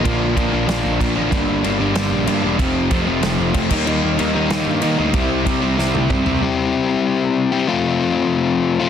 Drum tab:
CC |x-x-x-x-|x-x-x-x-|x-x-x-xx|x-x-x-x-|
SD |----o---|----o---|----o---|----o---|
T1 |--------|--------|--------|--------|
T2 |--------|--------|--------|--------|
FT |--------|--------|--------|--------|
BD |o-o---o-|o-------|o-o---oo|--------|

CC |x-x-----|--------|--------|
SD |----o---|--------|--------|
T1 |-----o--|--------|--------|
T2 |------o-|--------|--------|
FT |-------o|--------|--------|
BD |o-o---o-|--------|--------|